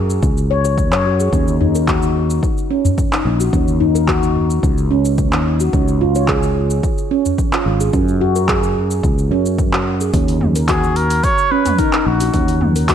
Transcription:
Already playing: fretless electric bass F#2, handpan A#4
0.10 shaker
0.23 fretless electric bass C#2, kick, shaker
0.38 shaker
0.51 handpan C#5
0.65 handpan C#5, shaker
0.78 kick, shaker
0.92 fretless electric bass F#2, handpan C#5, clap, shaker
1.06 handpan F#4
1.20 handpan G#4, shaker
1.33 fretless electric bass D#2, handpan C#4, kick, shaker
1.48 shaker
1.61 handpan D#4, udu
1.75 handpan A#4, shaker
1.88 handpan F#4, kick, clap, shaker
2.03 shaker
2.30 shaker
2.43 kick, shaker
2.58 shaker
2.71 handpan C#4
2.85 udu, shaker
2.98 kick, shaker
3.13 handpan D#4, clap, shaker
3.25 fretless electric bass A#1
3.40 handpan F#4, shaker
3.53 fretless electric bass D#2, handpan C#4, kick, shaker
3.68 shaker
3.80 handpan D#4, udu
3.95 handpan A#4, shaker
4.08 handpan F#4, kick, clap, shaker
4.23 shaker
4.35 udu
4.50 shaker
4.63 fretless electric bass C#2, kick, shaker
4.78 shaker
4.91 handpan C#4
5.05 shaker
5.18 kick, shaker
5.33 fretless electric bass D#2, handpan D#4, clap, shaker
5.60 handpan F#4, shaker
5.73 fretless electric bass C#2, handpan C#4, kick, shaker
5.88 shaker
6.01 handpan F4, udu
6.15 handpan C#5, shaker
6.28 handpan G#4, kick, clap, shaker
6.43 shaker
6.71 shaker
6.83 kick, shaker
6.98 shaker
7.11 handpan C#4
7.26 udu, shaker
7.38 kick, shaker
7.53 handpan F4, clap, shaker
7.66 fretless electric bass G#1
7.81 handpan G#4, shaker
7.93 fretless electric bass F#2, handpan C#4, kick, shaker
8.08 shaker
8.20 handpan F#4, udu
8.36 handpan A#4, shaker
8.48 handpan G#4, kick, clap, shaker
8.63 shaker
8.75 udu
8.91 shaker
9.03 fretless electric bass C#2, kick, shaker
9.19 shaker
9.31 fretless electric bass F#2, handpan C#4
9.46 shaker
9.59 kick, shaker
9.73 handpan F#4, clap, shaker
10.01 handpan G#4, shaker
10.14 fretless electric bass D#2, handpan C#4, kick, open hi-hat, shaker
10.28 open hi-hat, shaker
10.41 mid tom, udu
10.56 handpan A#4, open hi-hat, shaker
10.69 handpan F#4, muted trumpet G#4, kick, clap, open hi-hat, shaker
10.84 shaker
10.96 muted trumpet A#4, open hi-hat
11.10 open hi-hat, shaker
11.24 muted trumpet C#5, kick, open hi-hat, shaker
11.38 shaker
11.51 handpan C#4, muted trumpet B4
11.66 mid tom, open hi-hat, udu, shaker
11.79 handpan D#4, muted trumpet A#4, kick, open hi-hat, shaker
11.93 handpan D#4, clap, shaker
12.06 fretless electric bass A#1, muted trumpet F#4
12.20 handpan F#4, open hi-hat, shaker
12.34 fretless electric bass D#2, handpan C#4, kick, open hi-hat, shaker
12.48 open hi-hat, shaker
12.61 mid tom, udu
12.76 handpan A#4, open hi-hat, shaker
12.89 handpan F#4, kick, clap, open hi-hat, shaker

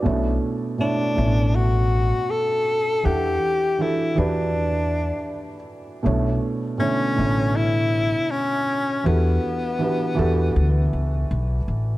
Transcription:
Already playing: felt piano F#4 D5
0.02 upright bass B1, felt piano B2 A3 C#4 E4 C#5
0.11 felt piano D4
0.78 felt piano B2 A3 D4 E4 C#5, tenor saxophone D4
1.15 upright bass A1, felt piano B2 A3 C#4 E4 C#5
1.24 felt piano D4
1.55 tenor saxophone F#4
2.30 tenor saxophone A4
3.03 upright bass E2, felt piano E3 D4 G4 A4 F#5, tenor saxophone G4
3.79 felt piano E3 D4 F#4 G4 A4, tenor saxophone E4
4.15 upright bass E2, felt piano E3 D4 F#4 G4 B4, tenor saxophone D4
6.03 upright bass B1, felt piano B2 A3 D4 E4 C#5
6.78 felt piano B2 D3 A3 E4 C#5, tenor saxophone C#4
7.16 upright bass A1, felt piano B2 D3 A3 E4 C#5
7.56 tenor saxophone E4
8.31 tenor saxophone C#4
9.04 upright bass E2, felt piano E3 D4 F#4 G4 A4, tenor saxophone B3
9.79 felt piano E3 D4 F#4 G4 B4
10.15 upright bass E2, felt piano E3 D4 F#4 G4 A4
10.56 upright bass D2
10.93 upright bass C#2
11.31 upright bass B1
11.68 upright bass A1

